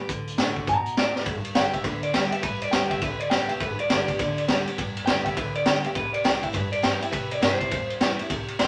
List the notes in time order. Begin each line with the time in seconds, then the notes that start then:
0.01 B3
0.09 D2 D3, kick, closed hi-hat
0.27 D2, closed hi-hat
0.38 A2 D3 A3 D4 F#4, snare, closed hi-hat
0.56 muted upright bass stroke, kick
0.67 G2 B2 A#5, kick, closed hi-hat
0.86 muted upright bass stroke, closed hi-hat
0.97 D2 A2 D5, snare, closed hi-hat
1.16 G2 B4, snare
1.26 G1 G2, kick, ride
1.45 muted upright bass stroke, ride
1.55 G1 D3 G3 B3 G4 G5, snare, ride
1.73 B3 G4 E5, muted upright bass stroke, kick, ride
1.84 D2 D3 B4, kick, ride
2.03 D5, muted upright bass stroke, ride
2.14 D2 D3 G3 B3 G4 G5, snare, ride
2.32 B3 G4 E5, muted upright bass stroke, ride
2.42 C2 G2 B4, kick, ride
2.62 G1 D5, ride
2.71 D2 D3 G3 B3 G4 G5, snare, ride
2.91 E5, muted upright bass stroke, kick, ride
3.02 C2 D3 B4, kick, ride
3.20 D5, muted upright bass stroke, ride
3.30 G1 D3 G3 B3 G4 G5, snare, ride
3.48 C2 B3 G4 E5, ride
3.60 G1 G2 B4, kick, ride
3.79 D5, muted upright bass stroke, ride
3.90 G1 D3 G3 B3 G4 D5, snare, ride
4.08 B3 G4, muted upright bass stroke, kick, ride
4.19 D2 D3, kick, ride
4.38 muted upright bass stroke, ride
4.48 D2 D3 G3 B3 G4, snare, ride
4.67 B3 G4, muted upright bass stroke, ride
4.78 C2 G2, kick, ride
4.97 G1, ride
5.06 D2 D3 G3 B3 G4 G5, snare, ride
5.25 E5, muted upright bass stroke, kick, ride
5.37 C2 D3 B4, kick, ride
5.55 D5, muted upright bass stroke, ride
5.66 G1 D3 G3 B3 G4 G5, snare, ride
5.84 D2 B3 G4 E5, ride
5.95 C2 C3 B4, kick, ride
6.13 D5, muted upright bass stroke, ride
6.24 C2 E3 G3 C4 E4 G5, snare, ride
6.42 C4 E4 E5, muted upright bass stroke, kick, ride
6.53 G2 B4, kick, ride
6.72 D5, muted upright bass stroke, ride
6.82 G2 E3 G3 C4 E4 G5, snare, ride
7.01 C4 E4 E5, muted upright bass stroke, ride
7.11 E2 C3 B4, kick, ride
7.31 C2 D5, ride
7.42 G2 E3 G3 C4 E4 C5, snare, ride
7.60 C4 E4, muted upright bass stroke, kick, ride
7.71 E2 G2, kick, ride
7.90 muted upright bass stroke, ride
8.01 C2 E3 G3 C4 E4, snare, ride
8.19 E2 C4 E4, ride
8.30 C2 C3, kick, ride
8.48 muted upright bass stroke, ride
8.59 C2 E3 G3 C4 E4 C6, snare, ride